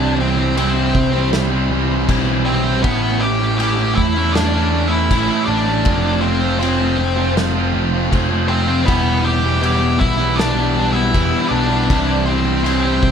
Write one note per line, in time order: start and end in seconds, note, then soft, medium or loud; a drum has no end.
0.00 0.91 C2 loud
0.00 0.53 C3 loud
0.00 0.17 E3 loud
0.00 0.17 G3 medium
0.00 0.18 C4 loud
0.00 0.16 D4 medium
0.00 0.20 E4 loud
0.00 0.17 D5 loud
0.18 0.55 E3 medium
0.18 0.38 G3 medium
0.18 0.37 C4 medium
0.18 0.55 C4 medium
0.18 0.37 E4 medium
0.18 0.55 C5 medium
0.37 0.55 G3 medium
0.37 0.55 C4 medium
0.37 0.57 E4 medium
0.55 1.12 C3 medium
0.55 0.92 E3 medium
0.55 0.76 G3 loud
0.55 0.75 C4 medium
0.55 1.29 C4 medium
0.55 0.74 E4 loud
0.55 1.29 C5 medium
0.55 crash medium
0.75 0.92 G3 medium
0.75 0.92 C4 medium
0.75 0.94 E4 medium
0.92 1.66 C2 medium
0.92 1.50 E3 medium
0.92 1.14 G3 medium
0.92 1.12 C4 medium
0.92 1.11 E4 medium
0.92 muted distorted electric guitar stroke soft
0.92 kick medium
1.12 1.51 G3 medium
1.12 1.50 C4 medium
1.12 1.49 E4 medium
1.33 snare medium
1.33 crash medium
1.50 1.89 G3 medium
1.50 1.88 C4 medium
1.50 1.87 E4 medium
1.70 2.04 C2 medium
1.70 2.07 E3 medium
1.70 2.08 G3 medium
1.70 2.09 C4 medium
1.74 2.10 E4 medium
1.88 2.07 G3 medium
1.88 2.07 C4 medium
1.88 2.07 E4 medium
2.06 2.80 B1 medium
2.06 2.80 C3 loud
2.06 2.43 E3 medium
2.06 2.44 G3 loud
2.06 2.45 C4 loud
2.06 2.46 E4 loud
2.06 kick medium
2.06 crash medium
2.26 2.44 G3 medium
2.26 2.45 C4 medium
2.26 2.47 E4 medium
2.45 2.81 E3 medium
2.45 2.64 G3 medium
2.45 2.81 C4 medium
2.45 2.63 C4 medium
2.45 2.61 E4 medium
2.45 2.82 C5 medium
2.63 2.81 G3 medium
2.63 2.81 C4 medium
2.63 2.80 E4 medium
2.81 3.93 A1 medium
2.81 3.57 A2 medium
2.81 3.18 E3 loud
2.81 3.20 A3 medium
2.81 3.18 B3 medium
2.81 3.19 C#4 loud
2.81 3.20 E4 loud
2.81 3.22 B4 medium
2.81 kick loud
2.81 crash medium
3.19 3.57 E3 medium
3.19 3.41 A3 medium
3.19 3.39 C#4 medium
3.19 3.38 E4 medium
3.19 3.57 G4 medium
3.19 3.56 G5 medium
3.39 3.59 A3 medium
3.39 3.59 C#4 medium
3.39 3.60 E4 medium
3.58 4.15 A2 medium
3.58 3.95 E3 medium
3.58 3.79 A3 medium
3.58 3.77 C#4 medium
3.58 3.76 E4 loud
3.58 3.95 G4 medium
3.58 3.95 G5 loud
3.58 crash medium
3.77 3.97 A3 medium
3.77 3.97 C#4 medium
3.77 3.97 E4 medium
3.95 5.06 E2 loud
3.95 4.53 E3 medium
3.95 4.17 A3 medium
3.95 4.16 C#4 medium
3.95 4.32 E4 medium
3.95 4.15 E4 medium
3.95 4.35 E5 loud
3.95 muted distorted electric guitar stroke medium
3.95 kick medium
4.16 4.54 A3 medium
4.16 4.54 C#4 medium
4.16 4.53 E4 medium
4.33 4.87 D4 medium
4.33 4.92 D5 medium
4.33 snare loud
4.33 crash soft
4.54 4.91 A3 medium
4.54 4.91 C#4 medium
4.54 4.89 E4 medium
4.72 5.08 E3 medium
4.72 5.10 A3 medium
4.72 5.11 C#4 medium
4.72 5.11 E4 medium
4.88 5.11 E4 medium
4.88 5.44 E4 medium
4.88 5.42 E5 loud
4.92 5.10 A3 medium
4.92 5.10 C#4 medium
5.09 5.28 A1 medium
5.09 5.83 A2 medium
5.09 5.45 E3 loud
5.09 5.46 A3 loud
5.09 5.47 C#4 loud
5.09 5.48 E4 loud
5.09 kick loud
5.09 crash medium
5.28 5.47 A3 medium
5.28 5.48 C#4 medium
5.28 5.49 E4 medium
5.45 5.82 A1 medium
5.45 5.83 E3 medium
5.45 5.67 A3 medium
5.45 5.65 C#4 medium
5.45 6.19 D4 medium
5.45 5.64 E4 medium
5.45 6.21 D5 loud
5.66 5.84 A3 medium
5.66 5.83 C#4 medium
5.66 5.83 E4 medium
5.84 6.95 F1 medium
5.84 6.21 F3 medium
5.84 6.22 A3 loud
5.84 6.23 C4 loud
5.84 6.23 F4 medium
5.84 kick loud
5.84 crash medium
6.21 6.58 F3 medium
6.21 6.43 A3 medium
6.21 6.58 C4 medium
6.21 6.41 C4 medium
6.21 6.40 F4 medium
6.21 6.58 C5 medium
6.41 6.59 A3 medium
6.41 6.60 C4 medium
6.41 6.61 F4 medium
6.59 6.97 F3 medium
6.59 6.80 A3 medium
6.59 6.79 C4 loud
6.59 7.33 C4 medium
6.59 6.77 F4 medium
6.59 7.32 C5 medium
6.59 crash medium
6.78 6.98 A3 medium
6.78 6.99 C4 medium
6.78 6.99 F4 medium
6.98 7.70 F1 medium
6.98 7.55 F3 medium
6.98 7.18 A3 medium
6.98 7.17 C4 medium
6.98 7.15 F4 medium
6.98 muted distorted electric guitar stroke medium
7.17 7.57 A3 medium
7.17 7.56 C4 medium
7.17 7.54 F4 medium
7.37 snare medium
7.37 crash soft
7.56 7.94 A3 medium
7.56 7.93 C4 medium
7.56 7.91 F4 medium
7.72 8.08 F1 loud
7.72 8.09 F3 medium
7.72 8.10 A3 medium
7.72 8.11 C4 medium
7.72 8.12 F4 medium
7.93 8.11 A3 medium
7.93 8.12 C4 medium
7.93 8.13 F4 medium
8.11 8.84 F1 medium
8.11 8.47 F3 medium
8.11 8.47 A3 loud
8.11 8.48 C4 medium
8.11 8.50 F4 loud
8.11 kick medium
8.11 crash medium
8.29 8.47 A3 medium
8.29 8.48 C4 medium
8.29 8.49 F4 medium
8.48 8.84 F3 medium
8.48 8.68 A3 medium
8.48 8.85 C4 medium
8.48 8.67 C4 medium
8.48 8.66 F4 medium
8.48 8.84 C5 medium
8.67 8.85 A3 medium
8.67 8.85 C4 medium
8.67 8.84 F4 medium
8.86 9.97 E1 loud
8.86 9.22 E3 loud
8.86 9.24 G3 loud
8.86 9.22 B3 medium
8.86 9.23 B3 medium
8.86 9.25 E4 medium
8.86 9.25 B4 medium
8.86 kick loud
8.86 crash medium
9.23 9.59 E3 medium
9.23 9.43 G3 medium
9.23 9.41 B3 medium
9.23 9.40 E4 medium
9.23 9.60 G4 medium
9.23 9.61 G5 loud
9.41 9.60 G3 medium
9.41 9.60 B3 medium
9.41 9.62 E4 medium
9.59 9.98 E3 medium
9.59 9.81 G3 loud
9.59 9.79 B3 loud
9.59 9.78 E4 medium
9.59 10.01 G5 medium
9.59 crash medium
9.65 9.99 G4 medium
9.79 9.98 G3 medium
9.79 9.98 B3 medium
9.79 10.00 E4 medium
9.98 11.10 B1 medium
9.98 11.10 E3 medium
9.98 10.18 G3 medium
9.98 10.17 B3 medium
9.98 10.16 E4 medium
9.98 10.36 E4 medium
9.98 10.39 E5 loud
9.98 muted distorted electric guitar stroke medium
9.98 kick medium
10.16 10.55 G3 medium
10.16 10.54 B3 medium
10.16 10.54 E4 medium
10.36 10.91 D4 medium
10.36 10.95 D5 loud
10.36 snare loud
10.36 crash soft
10.54 10.93 G3 medium
10.54 10.92 B3 medium
10.54 10.92 E4 medium
10.74 11.13 E3 medium
10.74 11.13 G3 medium
10.74 11.14 B3 medium
10.74 11.16 E4 medium
10.92 11.10 G3 medium
10.92 11.12 B3 medium
10.92 11.13 E4 medium
10.92 11.47 E4 medium
10.92 11.46 E5 loud
11.11 11.31 E1 loud
11.11 11.49 E3 loud
11.11 11.49 G3 medium
11.11 11.50 B3 loud
11.11 11.51 E4 loud
11.11 kick medium
11.15 crash medium
11.31 11.49 G3 medium
11.31 11.51 B3 medium
11.31 11.52 E4 medium
11.49 11.85 B1 medium
11.49 11.87 E3 medium
11.49 11.70 G3 medium
11.49 11.68 B3 medium
11.49 12.22 D4 medium
11.49 11.68 E4 medium
11.49 12.25 D5 loud
11.68 11.87 G3 medium
11.68 11.87 B3 medium
11.68 11.88 E4 medium
11.86 12.61 C3 medium
11.86 12.24 E3 loud
11.86 12.25 G3 medium
11.86 12.26 C4 loud
11.86 12.27 E4 loud
11.90 12.99 C2 loud
11.90 kick loud
11.90 crash medium
12.24 12.63 E3 medium
12.24 12.45 G3 medium
12.24 12.44 C4 medium
12.24 12.62 C4 medium
12.24 12.44 E4 medium
12.24 12.63 C5 medium
12.44 12.62 G3 medium
12.44 12.63 C4 medium
12.44 12.64 E4 medium
12.62 13.11 C3 loud
12.62 13.00 E3 loud
12.62 12.83 G3 medium
12.62 12.82 C4 loud
12.62 13.11 C4 medium
12.62 12.82 E4 loud
12.62 13.11 C5 medium
12.66 crash medium
12.82 13.00 G3 medium
12.82 13.01 C4 medium
12.82 13.02 E4 medium
13.01 13.11 C2 medium
13.01 13.11 E3 medium
13.01 13.11 G3 medium
13.01 13.11 C4 medium
13.01 13.11 E4 medium
13.01 muted distorted electric guitar stroke soft
13.01 kick medium